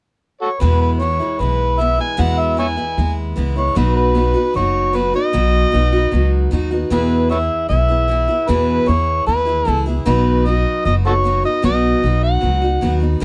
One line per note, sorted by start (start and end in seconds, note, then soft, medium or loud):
0.41 0.49 F#4 soft
0.41 0.49 A4 soft
0.41 0.62 C#5 medium
0.60 1.00 E2 medium
0.60 1.19 E2 medium
0.60 1.01 B2 medium
0.60 0.98 E3 medium
0.60 1.00 G#3 medium
0.60 1.01 B3 medium
0.60 1.01 E4 medium
0.60 0.81 B4 medium
0.82 0.90 B4 medium
1.00 1.20 E3 soft
1.00 1.20 G#3 soft
1.00 1.19 B3 soft
1.00 1.18 E4 medium
1.00 1.41 C#5 medium
1.19 1.38 E3 soft
1.19 1.39 G#3 soft
1.19 1.40 B3 soft
1.19 1.40 E4 soft
1.39 1.97 B1 medium
1.39 1.77 E3 soft
1.39 1.79 G#3 medium
1.39 1.80 B3 medium
1.39 1.80 E4 medium
1.39 1.81 B4 medium
1.78 1.99 E3 soft
1.78 1.99 G#3 medium
1.78 1.97 B3 medium
1.78 1.96 E4 medium
1.78 1.99 E5 medium
1.98 2.16 E3 soft
1.98 2.17 G#3 soft
1.98 2.18 B3 soft
1.98 2.18 E4 soft
1.98 2.22 G#5 medium
2.17 2.57 E2 medium
2.17 2.76 E2 medium
2.17 2.58 B2 medium
2.17 2.56 E3 medium
2.17 2.57 G#3 medium
2.17 2.58 B3 medium
2.17 2.58 E4 medium
2.17 2.41 F#5 medium
2.40 2.58 E5 medium
2.57 2.77 E3 medium
2.57 2.77 G#3 medium
2.57 2.76 B3 soft
2.57 2.75 E4 medium
2.57 2.67 C#5 soft
2.57 2.66 E5 soft
2.57 3.14 G#5 medium
2.76 2.98 E3 soft
2.76 2.96 G#3 soft
2.76 2.97 B3 soft
2.76 2.97 E4 soft
2.98 3.31 D#2 medium
2.98 3.35 G#3 soft
2.98 3.37 B3 medium
2.98 3.37 E4 medium
3.36 3.71 C#2 medium
3.36 3.56 E3 medium
3.36 3.56 G#3 medium
3.36 3.55 B3 medium
3.36 3.54 E4 medium
3.56 3.76 E3 soft
3.56 3.76 G#3 soft
3.56 3.75 B3 soft
3.56 3.76 E4 soft
3.56 3.76 C#5 medium
3.75 4.33 B1 medium
3.75 4.15 B2 medium
3.75 4.13 F#3 medium
3.75 4.15 B3 medium
3.75 4.15 D#4 medium
3.75 4.16 F#4 medium
3.75 3.95 B4 medium
3.97 4.51 B4 medium
4.14 4.35 F#3 soft
4.14 4.35 B3 medium
4.14 4.34 D#4 medium
4.14 4.32 F#4 medium
4.34 4.54 B3 soft
4.34 4.55 D#4 soft
4.34 4.54 F#4 soft
4.54 5.13 F#1 medium
4.54 4.92 F#3 medium
4.54 4.94 B3 medium
4.54 4.94 D#4 medium
4.54 4.95 F#4 medium
4.54 4.97 C#5 medium
4.93 5.13 F#3 medium
4.93 5.14 B3 medium
4.93 5.14 D#4 medium
4.93 5.12 F#4 medium
4.93 5.15 B4 medium
5.14 5.33 B3 soft
5.14 5.33 D#4 soft
5.14 5.34 F#4 soft
5.14 6.49 D#5 loud
5.33 5.63 B1 medium
5.33 5.73 B2 medium
5.33 5.71 F#3 medium
5.33 5.72 B3 medium
5.33 5.73 D#4 medium
5.33 5.73 F#4 medium
5.72 6.07 B1 medium
5.72 5.92 F#3 medium
5.72 5.93 B3 medium
5.72 5.92 D#4 medium
5.72 5.91 F#4 medium
5.92 6.11 B3 soft
5.92 6.12 D#4 soft
5.92 6.12 F#4 medium
6.12 6.46 C#2 medium
6.12 6.50 F#3 medium
6.12 6.51 B3 medium
6.12 6.52 D#4 medium
6.12 6.53 F#4 medium
6.51 6.86 D#2 medium
6.51 6.71 F#3 medium
6.51 6.72 B3 medium
6.51 6.71 D#4 medium
6.51 6.70 F#4 medium
6.71 6.91 B3 soft
6.71 6.91 D#4 soft
6.71 6.91 F#4 soft
6.90 7.30 E2 medium
6.90 7.48 E2 medium
6.90 7.30 B2 medium
6.90 7.28 E3 medium
6.90 7.30 B3 medium
6.90 7.31 E4 medium
6.90 7.31 G#4 medium
6.90 7.28 B4 medium
7.29 7.67 E3 medium
7.29 7.70 B3 soft
7.29 7.70 E4 medium
7.29 7.71 G#4 medium
7.29 7.38 B4 soft
7.29 7.38 C#5 soft
7.29 7.67 E5 medium
7.69 8.27 B1 medium
7.69 7.89 E3 soft
7.69 7.89 B3 soft
7.69 7.88 E4 medium
7.69 7.87 G#4 soft
7.69 8.50 E5 medium
7.88 8.07 E3 soft
7.88 8.08 B3 soft
7.88 8.09 E4 soft
7.88 8.09 G#4 soft
8.08 8.28 E3 medium
8.08 8.29 B3 medium
8.08 8.28 E4 medium
8.08 8.27 G#4 medium
8.28 8.47 E3 soft
8.28 8.48 B3 soft
8.28 8.48 E4 soft
8.28 8.48 G#4 soft
8.48 8.88 E2 medium
8.48 8.77 E2 medium
8.48 8.88 B2 medium
8.48 8.85 E3 medium
8.48 8.88 B3 medium
8.48 8.88 E4 medium
8.48 8.89 G#4 medium
8.48 8.90 B4 medium
8.86 9.22 E2 medium
8.86 9.25 E3 soft
8.86 9.27 B3 medium
8.86 9.27 E4 medium
8.86 9.28 G#4 medium
8.86 9.26 C#5 medium
9.26 9.61 D#2 medium
9.26 9.47 E3 soft
9.26 9.46 B3 soft
9.26 9.45 E4 medium
9.26 9.44 G#4 medium
9.26 9.70 B4 medium
9.45 9.64 E3 soft
9.45 9.65 B3 soft
9.45 9.66 E4 soft
9.45 9.66 G#4 soft
9.65 10.01 C#2 medium
9.65 9.86 E3 medium
9.65 9.86 B3 medium
9.65 9.86 E4 medium
9.65 9.85 G#4 medium
9.70 9.82 A4 medium
9.86 10.05 E3 soft
9.86 10.05 B3 soft
9.86 10.06 E4 soft
9.86 10.06 G#4 soft
10.05 10.64 B1 medium
10.05 10.45 B2 medium
10.05 10.44 F#3 medium
10.05 10.46 B3 medium
10.05 10.46 D#4 medium
10.05 10.46 F#4 medium
10.05 10.47 B4 medium
10.45 10.84 F#3 soft
10.45 10.86 B3 soft
10.45 10.86 D#4 medium
10.45 10.86 F#4 medium
10.45 10.85 D#5 medium
10.85 11.42 F#1 medium
10.85 11.05 F#3 medium
10.85 11.05 B3 soft
10.85 11.05 D#4 medium
10.85 11.04 F#4 medium
10.85 10.94 D#5 medium
11.05 11.24 B3 soft
11.05 11.25 D#4 soft
11.05 11.25 F#4 soft
11.05 11.12 F#4 medium
11.05 11.14 A4 medium
11.05 11.42 C#5 medium
11.24 11.44 F#3 medium
11.24 11.45 B3 medium
11.24 11.44 D#4 medium
11.24 11.42 F#4 medium
11.43 11.62 B3 soft
11.43 11.63 D#4 soft
11.43 11.63 F#4 soft
11.43 11.63 D#5 medium
11.62 11.93 B1 medium
11.62 12.03 B2 medium
11.62 12.02 F#3 medium
11.62 12.03 B3 medium
11.62 12.03 D#4 medium
11.62 12.04 F#4 medium
11.62 12.20 D#5 medium
12.03 12.37 B1 medium
12.03 12.39 F#3 medium
12.03 12.41 B3 soft
12.03 12.42 D#4 medium
12.03 12.43 F#4 medium
12.23 12.98 F#5 medium
12.41 12.77 C#2 medium
12.41 12.61 F#3 soft
12.41 12.62 B3 soft
12.41 12.62 D#4 soft
12.41 12.60 F#4 soft
12.61 12.81 B3 soft
12.61 12.82 D#4 soft
12.61 12.82 F#4 soft
12.81 13.16 D#2 medium
12.81 13.01 F#3 medium
12.81 13.02 B3 medium
12.81 13.01 D#4 medium
12.81 12.99 F#4 medium
13.00 13.21 B3 soft
13.00 13.22 D#4 soft
13.00 13.21 F#4 soft
13.20 13.24 E2 medium
13.20 13.24 B2 medium
13.20 13.24 E3 medium